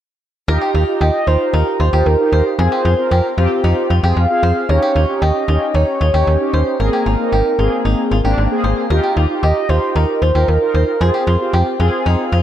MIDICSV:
0, 0, Header, 1, 5, 480
1, 0, Start_track
1, 0, Key_signature, -3, "major"
1, 0, Tempo, 526316
1, 440, Time_signature, 4, 2, 24, 8
1, 11333, End_track
2, 0, Start_track
2, 0, Title_t, "Soft synth lead"
2, 0, Program_c, 0, 80
2, 920, Note_on_c, 0, 75, 101
2, 1160, Note_on_c, 0, 72, 98
2, 1174, Note_off_c, 0, 75, 0
2, 1401, Note_on_c, 0, 70, 88
2, 1415, Note_off_c, 0, 72, 0
2, 1641, Note_on_c, 0, 72, 87
2, 1654, Note_off_c, 0, 70, 0
2, 1881, Note_on_c, 0, 70, 91
2, 1895, Note_off_c, 0, 72, 0
2, 2116, Note_off_c, 0, 70, 0
2, 2121, Note_on_c, 0, 70, 81
2, 2229, Note_off_c, 0, 70, 0
2, 2361, Note_on_c, 0, 72, 90
2, 3284, Note_off_c, 0, 72, 0
2, 3799, Note_on_c, 0, 77, 108
2, 4279, Note_on_c, 0, 73, 103
2, 4293, Note_off_c, 0, 77, 0
2, 4760, Note_on_c, 0, 75, 101
2, 4774, Note_off_c, 0, 73, 0
2, 5240, Note_on_c, 0, 73, 101
2, 5254, Note_off_c, 0, 75, 0
2, 5959, Note_on_c, 0, 72, 86
2, 5973, Note_off_c, 0, 73, 0
2, 6194, Note_off_c, 0, 72, 0
2, 6199, Note_on_c, 0, 70, 88
2, 7843, Note_off_c, 0, 70, 0
2, 8600, Note_on_c, 0, 75, 105
2, 8840, Note_on_c, 0, 72, 98
2, 8853, Note_off_c, 0, 75, 0
2, 9080, Note_on_c, 0, 70, 92
2, 9093, Note_off_c, 0, 72, 0
2, 9319, Note_on_c, 0, 72, 93
2, 9333, Note_off_c, 0, 70, 0
2, 9559, Note_on_c, 0, 70, 92
2, 9573, Note_off_c, 0, 72, 0
2, 9793, Note_off_c, 0, 70, 0
2, 9798, Note_on_c, 0, 70, 83
2, 10040, Note_on_c, 0, 72, 90
2, 10053, Note_off_c, 0, 70, 0
2, 11000, Note_off_c, 0, 72, 0
2, 11333, End_track
3, 0, Start_track
3, 0, Title_t, "Five-string banjo"
3, 0, Program_c, 1, 105
3, 440, Note_on_c, 1, 70, 89
3, 520, Note_off_c, 1, 70, 0
3, 560, Note_on_c, 1, 67, 67
3, 640, Note_off_c, 1, 67, 0
3, 680, Note_on_c, 1, 65, 77
3, 840, Note_off_c, 1, 65, 0
3, 921, Note_on_c, 1, 67, 77
3, 1081, Note_off_c, 1, 67, 0
3, 1160, Note_on_c, 1, 65, 76
3, 1321, Note_off_c, 1, 65, 0
3, 1400, Note_on_c, 1, 63, 82
3, 1560, Note_off_c, 1, 63, 0
3, 1640, Note_on_c, 1, 65, 77
3, 1720, Note_off_c, 1, 65, 0
3, 1760, Note_on_c, 1, 67, 69
3, 1921, Note_off_c, 1, 67, 0
3, 2121, Note_on_c, 1, 72, 72
3, 2281, Note_off_c, 1, 72, 0
3, 2360, Note_on_c, 1, 68, 91
3, 2440, Note_off_c, 1, 68, 0
3, 2480, Note_on_c, 1, 67, 70
3, 2560, Note_off_c, 1, 67, 0
3, 2600, Note_on_c, 1, 65, 79
3, 2760, Note_off_c, 1, 65, 0
3, 2840, Note_on_c, 1, 67, 83
3, 3000, Note_off_c, 1, 67, 0
3, 3081, Note_on_c, 1, 65, 74
3, 3241, Note_off_c, 1, 65, 0
3, 3320, Note_on_c, 1, 63, 84
3, 3480, Note_off_c, 1, 63, 0
3, 3560, Note_on_c, 1, 65, 76
3, 3640, Note_off_c, 1, 65, 0
3, 3680, Note_on_c, 1, 67, 72
3, 3841, Note_off_c, 1, 67, 0
3, 4040, Note_on_c, 1, 72, 75
3, 4200, Note_off_c, 1, 72, 0
3, 4279, Note_on_c, 1, 70, 89
3, 4360, Note_off_c, 1, 70, 0
3, 4400, Note_on_c, 1, 67, 73
3, 4480, Note_off_c, 1, 67, 0
3, 4520, Note_on_c, 1, 65, 76
3, 4680, Note_off_c, 1, 65, 0
3, 4760, Note_on_c, 1, 67, 78
3, 4920, Note_off_c, 1, 67, 0
3, 4999, Note_on_c, 1, 65, 78
3, 5160, Note_off_c, 1, 65, 0
3, 5239, Note_on_c, 1, 63, 85
3, 5400, Note_off_c, 1, 63, 0
3, 5480, Note_on_c, 1, 65, 78
3, 5560, Note_off_c, 1, 65, 0
3, 5599, Note_on_c, 1, 67, 70
3, 5760, Note_off_c, 1, 67, 0
3, 5960, Note_on_c, 1, 72, 75
3, 6120, Note_off_c, 1, 72, 0
3, 6200, Note_on_c, 1, 70, 90
3, 6280, Note_off_c, 1, 70, 0
3, 6321, Note_on_c, 1, 67, 69
3, 6401, Note_off_c, 1, 67, 0
3, 6440, Note_on_c, 1, 65, 77
3, 6600, Note_off_c, 1, 65, 0
3, 6680, Note_on_c, 1, 67, 78
3, 6840, Note_off_c, 1, 67, 0
3, 6920, Note_on_c, 1, 65, 74
3, 7081, Note_off_c, 1, 65, 0
3, 7161, Note_on_c, 1, 63, 81
3, 7321, Note_off_c, 1, 63, 0
3, 7400, Note_on_c, 1, 65, 73
3, 7480, Note_off_c, 1, 65, 0
3, 7521, Note_on_c, 1, 67, 72
3, 7681, Note_off_c, 1, 67, 0
3, 7880, Note_on_c, 1, 72, 73
3, 8040, Note_off_c, 1, 72, 0
3, 8120, Note_on_c, 1, 70, 92
3, 8200, Note_off_c, 1, 70, 0
3, 8240, Note_on_c, 1, 67, 69
3, 8320, Note_off_c, 1, 67, 0
3, 8360, Note_on_c, 1, 65, 75
3, 8520, Note_off_c, 1, 65, 0
3, 8599, Note_on_c, 1, 67, 76
3, 8760, Note_off_c, 1, 67, 0
3, 8840, Note_on_c, 1, 65, 75
3, 9000, Note_off_c, 1, 65, 0
3, 9080, Note_on_c, 1, 63, 85
3, 9240, Note_off_c, 1, 63, 0
3, 9319, Note_on_c, 1, 65, 74
3, 9400, Note_off_c, 1, 65, 0
3, 9439, Note_on_c, 1, 67, 73
3, 9600, Note_off_c, 1, 67, 0
3, 9799, Note_on_c, 1, 72, 73
3, 9960, Note_off_c, 1, 72, 0
3, 10039, Note_on_c, 1, 68, 93
3, 10120, Note_off_c, 1, 68, 0
3, 10159, Note_on_c, 1, 67, 68
3, 10240, Note_off_c, 1, 67, 0
3, 10279, Note_on_c, 1, 65, 77
3, 10440, Note_off_c, 1, 65, 0
3, 10519, Note_on_c, 1, 67, 79
3, 10680, Note_off_c, 1, 67, 0
3, 10759, Note_on_c, 1, 65, 77
3, 10919, Note_off_c, 1, 65, 0
3, 10999, Note_on_c, 1, 63, 88
3, 11160, Note_off_c, 1, 63, 0
3, 11239, Note_on_c, 1, 65, 76
3, 11319, Note_off_c, 1, 65, 0
3, 11333, End_track
4, 0, Start_track
4, 0, Title_t, "Analog polysynth"
4, 0, Program_c, 2, 90
4, 440, Note_on_c, 2, 63, 86
4, 440, Note_on_c, 2, 65, 82
4, 440, Note_on_c, 2, 67, 100
4, 760, Note_off_c, 2, 63, 0
4, 760, Note_off_c, 2, 65, 0
4, 760, Note_off_c, 2, 67, 0
4, 800, Note_on_c, 2, 63, 72
4, 800, Note_on_c, 2, 65, 64
4, 800, Note_on_c, 2, 67, 79
4, 1120, Note_off_c, 2, 63, 0
4, 1120, Note_off_c, 2, 65, 0
4, 1120, Note_off_c, 2, 67, 0
4, 1160, Note_on_c, 2, 63, 74
4, 1160, Note_on_c, 2, 65, 67
4, 1160, Note_on_c, 2, 67, 82
4, 1693, Note_off_c, 2, 63, 0
4, 1693, Note_off_c, 2, 65, 0
4, 1693, Note_off_c, 2, 67, 0
4, 1760, Note_on_c, 2, 63, 72
4, 1760, Note_on_c, 2, 65, 67
4, 1760, Note_on_c, 2, 67, 80
4, 1973, Note_off_c, 2, 63, 0
4, 1973, Note_off_c, 2, 65, 0
4, 1973, Note_off_c, 2, 67, 0
4, 2000, Note_on_c, 2, 63, 75
4, 2000, Note_on_c, 2, 65, 68
4, 2000, Note_on_c, 2, 67, 82
4, 2320, Note_off_c, 2, 63, 0
4, 2320, Note_off_c, 2, 65, 0
4, 2320, Note_off_c, 2, 67, 0
4, 2360, Note_on_c, 2, 60, 76
4, 2360, Note_on_c, 2, 65, 71
4, 2360, Note_on_c, 2, 68, 82
4, 2680, Note_off_c, 2, 60, 0
4, 2680, Note_off_c, 2, 65, 0
4, 2680, Note_off_c, 2, 68, 0
4, 2720, Note_on_c, 2, 60, 70
4, 2720, Note_on_c, 2, 65, 65
4, 2720, Note_on_c, 2, 70, 78
4, 3040, Note_off_c, 2, 60, 0
4, 3040, Note_off_c, 2, 65, 0
4, 3040, Note_off_c, 2, 70, 0
4, 3080, Note_on_c, 2, 60, 86
4, 3080, Note_on_c, 2, 65, 82
4, 3080, Note_on_c, 2, 67, 97
4, 3613, Note_off_c, 2, 60, 0
4, 3613, Note_off_c, 2, 65, 0
4, 3613, Note_off_c, 2, 67, 0
4, 3680, Note_on_c, 2, 60, 73
4, 3680, Note_on_c, 2, 65, 66
4, 3680, Note_on_c, 2, 68, 81
4, 3893, Note_off_c, 2, 60, 0
4, 3893, Note_off_c, 2, 65, 0
4, 3893, Note_off_c, 2, 68, 0
4, 3920, Note_on_c, 2, 60, 78
4, 3920, Note_on_c, 2, 65, 68
4, 3920, Note_on_c, 2, 68, 84
4, 4240, Note_off_c, 2, 60, 0
4, 4240, Note_off_c, 2, 65, 0
4, 4240, Note_off_c, 2, 68, 0
4, 4280, Note_on_c, 2, 61, 74
4, 4280, Note_on_c, 2, 63, 69
4, 4280, Note_on_c, 2, 67, 83
4, 4600, Note_off_c, 2, 61, 0
4, 4600, Note_off_c, 2, 63, 0
4, 4600, Note_off_c, 2, 67, 0
4, 4640, Note_on_c, 2, 61, 74
4, 4640, Note_on_c, 2, 63, 66
4, 4640, Note_on_c, 2, 67, 76
4, 4960, Note_off_c, 2, 61, 0
4, 4960, Note_off_c, 2, 63, 0
4, 4960, Note_off_c, 2, 67, 0
4, 5000, Note_on_c, 2, 61, 75
4, 5000, Note_on_c, 2, 63, 70
4, 5000, Note_on_c, 2, 67, 82
4, 5533, Note_off_c, 2, 61, 0
4, 5533, Note_off_c, 2, 63, 0
4, 5533, Note_off_c, 2, 67, 0
4, 5600, Note_on_c, 2, 61, 76
4, 5600, Note_on_c, 2, 63, 69
4, 5600, Note_on_c, 2, 67, 80
4, 5813, Note_off_c, 2, 61, 0
4, 5813, Note_off_c, 2, 63, 0
4, 5813, Note_off_c, 2, 67, 0
4, 5840, Note_on_c, 2, 61, 77
4, 5840, Note_on_c, 2, 63, 69
4, 5840, Note_on_c, 2, 67, 81
4, 6160, Note_off_c, 2, 61, 0
4, 6160, Note_off_c, 2, 63, 0
4, 6160, Note_off_c, 2, 67, 0
4, 6200, Note_on_c, 2, 58, 76
4, 6200, Note_on_c, 2, 60, 70
4, 6200, Note_on_c, 2, 68, 84
4, 6520, Note_off_c, 2, 58, 0
4, 6520, Note_off_c, 2, 60, 0
4, 6520, Note_off_c, 2, 68, 0
4, 6559, Note_on_c, 2, 63, 78
4, 6560, Note_on_c, 2, 58, 69
4, 6560, Note_on_c, 2, 60, 66
4, 6880, Note_off_c, 2, 58, 0
4, 6880, Note_off_c, 2, 60, 0
4, 6880, Note_off_c, 2, 63, 0
4, 6920, Note_on_c, 2, 58, 86
4, 6920, Note_on_c, 2, 60, 82
4, 6920, Note_on_c, 2, 68, 97
4, 7453, Note_off_c, 2, 58, 0
4, 7453, Note_off_c, 2, 60, 0
4, 7453, Note_off_c, 2, 68, 0
4, 7519, Note_on_c, 2, 60, 79
4, 7519, Note_on_c, 2, 62, 99
4, 7520, Note_on_c, 2, 58, 89
4, 7733, Note_off_c, 2, 58, 0
4, 7733, Note_off_c, 2, 60, 0
4, 7733, Note_off_c, 2, 62, 0
4, 7760, Note_on_c, 2, 58, 90
4, 7760, Note_on_c, 2, 60, 79
4, 7760, Note_on_c, 2, 68, 101
4, 8080, Note_off_c, 2, 58, 0
4, 8080, Note_off_c, 2, 60, 0
4, 8080, Note_off_c, 2, 68, 0
4, 8119, Note_on_c, 2, 63, 87
4, 8119, Note_on_c, 2, 65, 83
4, 8119, Note_on_c, 2, 67, 97
4, 8439, Note_off_c, 2, 63, 0
4, 8439, Note_off_c, 2, 65, 0
4, 8439, Note_off_c, 2, 67, 0
4, 8479, Note_on_c, 2, 65, 65
4, 8479, Note_on_c, 2, 67, 77
4, 8480, Note_on_c, 2, 63, 73
4, 8800, Note_off_c, 2, 63, 0
4, 8800, Note_off_c, 2, 65, 0
4, 8800, Note_off_c, 2, 67, 0
4, 8839, Note_on_c, 2, 63, 74
4, 8839, Note_on_c, 2, 65, 67
4, 8839, Note_on_c, 2, 67, 82
4, 9373, Note_off_c, 2, 63, 0
4, 9373, Note_off_c, 2, 65, 0
4, 9373, Note_off_c, 2, 67, 0
4, 9439, Note_on_c, 2, 63, 72
4, 9439, Note_on_c, 2, 70, 82
4, 9440, Note_on_c, 2, 65, 70
4, 9653, Note_off_c, 2, 63, 0
4, 9653, Note_off_c, 2, 65, 0
4, 9653, Note_off_c, 2, 70, 0
4, 9679, Note_on_c, 2, 63, 78
4, 9679, Note_on_c, 2, 65, 67
4, 9679, Note_on_c, 2, 70, 85
4, 9999, Note_off_c, 2, 63, 0
4, 9999, Note_off_c, 2, 70, 0
4, 10000, Note_off_c, 2, 65, 0
4, 10040, Note_on_c, 2, 60, 77
4, 10040, Note_on_c, 2, 65, 68
4, 10040, Note_on_c, 2, 68, 80
4, 10360, Note_off_c, 2, 60, 0
4, 10360, Note_off_c, 2, 65, 0
4, 10360, Note_off_c, 2, 68, 0
4, 10399, Note_on_c, 2, 60, 70
4, 10399, Note_on_c, 2, 65, 65
4, 10399, Note_on_c, 2, 67, 77
4, 10719, Note_off_c, 2, 60, 0
4, 10719, Note_off_c, 2, 65, 0
4, 10719, Note_off_c, 2, 67, 0
4, 10759, Note_on_c, 2, 60, 85
4, 10759, Note_on_c, 2, 65, 81
4, 10759, Note_on_c, 2, 68, 99
4, 11293, Note_off_c, 2, 60, 0
4, 11293, Note_off_c, 2, 65, 0
4, 11293, Note_off_c, 2, 68, 0
4, 11333, End_track
5, 0, Start_track
5, 0, Title_t, "FM bass"
5, 0, Program_c, 3, 39
5, 440, Note_on_c, 3, 39, 106
5, 530, Note_off_c, 3, 39, 0
5, 680, Note_on_c, 3, 39, 96
5, 770, Note_off_c, 3, 39, 0
5, 920, Note_on_c, 3, 39, 103
5, 1010, Note_off_c, 3, 39, 0
5, 1160, Note_on_c, 3, 39, 92
5, 1250, Note_off_c, 3, 39, 0
5, 1400, Note_on_c, 3, 39, 105
5, 1490, Note_off_c, 3, 39, 0
5, 1640, Note_on_c, 3, 39, 94
5, 1730, Note_off_c, 3, 39, 0
5, 1760, Note_on_c, 3, 39, 94
5, 1850, Note_off_c, 3, 39, 0
5, 1880, Note_on_c, 3, 39, 96
5, 1969, Note_off_c, 3, 39, 0
5, 2120, Note_on_c, 3, 39, 95
5, 2210, Note_off_c, 3, 39, 0
5, 2359, Note_on_c, 3, 41, 116
5, 2449, Note_off_c, 3, 41, 0
5, 2599, Note_on_c, 3, 41, 103
5, 2689, Note_off_c, 3, 41, 0
5, 2839, Note_on_c, 3, 41, 98
5, 2929, Note_off_c, 3, 41, 0
5, 3079, Note_on_c, 3, 41, 101
5, 3169, Note_off_c, 3, 41, 0
5, 3319, Note_on_c, 3, 41, 95
5, 3409, Note_off_c, 3, 41, 0
5, 3559, Note_on_c, 3, 41, 93
5, 3649, Note_off_c, 3, 41, 0
5, 3679, Note_on_c, 3, 41, 100
5, 3769, Note_off_c, 3, 41, 0
5, 3800, Note_on_c, 3, 41, 96
5, 3889, Note_off_c, 3, 41, 0
5, 4040, Note_on_c, 3, 41, 101
5, 4130, Note_off_c, 3, 41, 0
5, 4279, Note_on_c, 3, 39, 99
5, 4369, Note_off_c, 3, 39, 0
5, 4520, Note_on_c, 3, 39, 95
5, 4610, Note_off_c, 3, 39, 0
5, 4760, Note_on_c, 3, 39, 101
5, 4850, Note_off_c, 3, 39, 0
5, 4999, Note_on_c, 3, 39, 98
5, 5089, Note_off_c, 3, 39, 0
5, 5240, Note_on_c, 3, 39, 99
5, 5330, Note_off_c, 3, 39, 0
5, 5480, Note_on_c, 3, 39, 93
5, 5570, Note_off_c, 3, 39, 0
5, 5599, Note_on_c, 3, 39, 96
5, 5689, Note_off_c, 3, 39, 0
5, 5720, Note_on_c, 3, 39, 97
5, 5810, Note_off_c, 3, 39, 0
5, 5960, Note_on_c, 3, 39, 97
5, 6050, Note_off_c, 3, 39, 0
5, 6200, Note_on_c, 3, 32, 96
5, 6290, Note_off_c, 3, 32, 0
5, 6440, Note_on_c, 3, 32, 94
5, 6530, Note_off_c, 3, 32, 0
5, 6680, Note_on_c, 3, 32, 92
5, 6770, Note_off_c, 3, 32, 0
5, 6920, Note_on_c, 3, 32, 102
5, 7010, Note_off_c, 3, 32, 0
5, 7160, Note_on_c, 3, 32, 99
5, 7250, Note_off_c, 3, 32, 0
5, 7400, Note_on_c, 3, 32, 100
5, 7490, Note_off_c, 3, 32, 0
5, 7520, Note_on_c, 3, 32, 95
5, 7610, Note_off_c, 3, 32, 0
5, 7640, Note_on_c, 3, 32, 102
5, 7729, Note_off_c, 3, 32, 0
5, 7880, Note_on_c, 3, 32, 95
5, 7970, Note_off_c, 3, 32, 0
5, 8120, Note_on_c, 3, 39, 102
5, 8210, Note_off_c, 3, 39, 0
5, 8360, Note_on_c, 3, 39, 99
5, 8449, Note_off_c, 3, 39, 0
5, 8600, Note_on_c, 3, 39, 99
5, 8690, Note_off_c, 3, 39, 0
5, 8840, Note_on_c, 3, 39, 93
5, 8929, Note_off_c, 3, 39, 0
5, 9080, Note_on_c, 3, 39, 103
5, 9170, Note_off_c, 3, 39, 0
5, 9320, Note_on_c, 3, 39, 93
5, 9410, Note_off_c, 3, 39, 0
5, 9439, Note_on_c, 3, 39, 92
5, 9529, Note_off_c, 3, 39, 0
5, 9559, Note_on_c, 3, 39, 96
5, 9649, Note_off_c, 3, 39, 0
5, 9799, Note_on_c, 3, 39, 92
5, 9889, Note_off_c, 3, 39, 0
5, 10040, Note_on_c, 3, 41, 116
5, 10129, Note_off_c, 3, 41, 0
5, 10280, Note_on_c, 3, 41, 102
5, 10370, Note_off_c, 3, 41, 0
5, 10519, Note_on_c, 3, 41, 104
5, 10609, Note_off_c, 3, 41, 0
5, 10760, Note_on_c, 3, 41, 100
5, 10850, Note_off_c, 3, 41, 0
5, 11000, Note_on_c, 3, 41, 96
5, 11089, Note_off_c, 3, 41, 0
5, 11239, Note_on_c, 3, 41, 96
5, 11329, Note_off_c, 3, 41, 0
5, 11333, End_track
0, 0, End_of_file